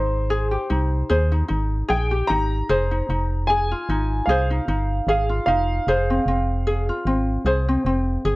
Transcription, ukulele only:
0.00 0.69 D#4 medium
0.00 0.30 G#4 medium
0.00 1.10 C5 medium
0.30 0.51 G#4 medium
0.51 1.88 G4 medium
0.70 1.31 D#4 medium
1.10 1.89 G#4 medium
1.10 2.70 C5 medium
1.32 1.48 D#4 medium
1.48 2.29 D#4 medium
1.89 2.11 G#4 medium
2.11 2.70 G4 medium
2.30 2.91 D#4 medium
2.69 3.50 G#4 medium
2.69 3.50 C5 medium
2.91 3.09 D#4 medium
3.10 3.88 D#4 medium
3.50 4.28 G#4 medium
3.71 5.08 F4 medium
3.89 4.49 D#4 medium
4.29 5.09 G#4 medium
4.29 5.88 C5 medium
4.50 4.67 D#4 medium
4.68 5.46 D#4 medium
5.09 5.29 G#4 medium
5.29 5.87 F4 medium
5.47 5.96 D#4 medium
5.88 6.66 G#4 medium
5.88 7.47 C5 medium
6.10 6.27 C4 medium
6.28 7.06 C4 medium
6.67 6.89 G#4 medium
6.89 7.46 F4 medium
7.07 7.68 C4 medium
7.46 8.25 G#4 medium
7.46 8.36 C5 medium
7.69 7.86 C4 medium
7.87 8.36 C4 medium
8.25 8.36 G#4 medium

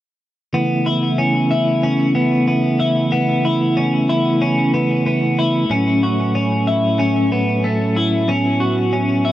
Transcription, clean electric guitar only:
0.54 0.87 B3 medium
0.86 1.19 E4 medium
1.18 1.51 C#4 medium
1.51 1.83 E4 medium
1.83 2.15 C#4 medium
2.15 2.47 B3 medium
2.48 2.80 B3 medium
2.80 3.12 E4 medium
3.12 3.45 B3 medium
3.45 3.77 E4 medium
3.77 4.09 C#4 medium
4.09 4.42 E4 medium
4.42 4.74 C#4 medium
4.74 5.05 B3 medium
5.06 5.38 B3 medium
5.39 5.71 E4 medium
5.71 6.03 C#4 medium
6.03 6.35 F#4 medium
6.35 6.67 C#4 medium
6.67 7.00 E4 medium
6.99 7.32 C#4 medium
7.32 7.64 B3 medium
7.64 7.96 A3 medium
7.96 8.29 E4 medium
8.29 8.61 C#4 medium
8.60 8.93 F#4 medium
8.93 9.25 C#4 medium
9.25 9.32 E4 medium

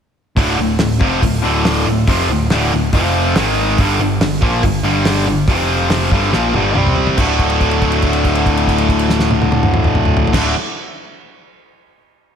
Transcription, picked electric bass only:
0.36 0.56 D1 medium
0.58 0.78 D1 medium
0.80 1.00 D1 medium
1.01 1.21 F1 medium
1.22 1.42 D1 medium
1.43 1.83 D1 loud
1.86 2.06 D1 medium
2.07 2.27 F1 medium
2.30 2.49 D1 medium
2.52 2.71 D1 medium
2.73 2.92 D1 medium
2.93 3.33 F1 medium
3.36 3.75 G#1 loud
3.78 3.98 G1 loud
4.00 4.19 G1 medium
4.20 4.40 G1 medium
4.43 4.62 A#1 loud
4.63 4.82 G1 medium
4.83 5.23 G1 medium
5.26 5.46 G1 medium
5.48 6.08 F1 medium
6.12 6.32 G1 medium
6.33 6.53 A#1 medium
6.54 6.74 G1 medium
6.76 7.15 C2 medium
7.17 10.24 D1 medium
10.33 10.51 D1 loud

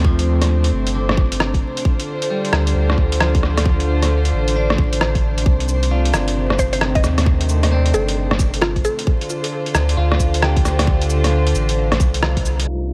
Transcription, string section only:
0.00 1.82 C3 medium
0.00 1.81 A3 medium
0.00 1.81 C4 medium
0.00 9.03 D4 medium
0.00 9.03 C5 medium
1.86 5.43 D3 medium
1.86 5.43 F4 medium
1.86 5.43 A4 medium
5.47 9.04 C3 medium
5.47 9.04 D#3 medium
5.47 9.04 A3 medium
9.07 12.64 D3 medium
9.07 12.64 D4 medium
9.07 12.64 F4 medium
9.07 12.64 A4 medium
9.07 12.64 C5 medium
12.67 12.93 C3 medium
12.67 12.93 G3 medium
12.67 12.93 A3 medium
12.67 12.93 D4 medium
12.67 12.93 D#4 medium

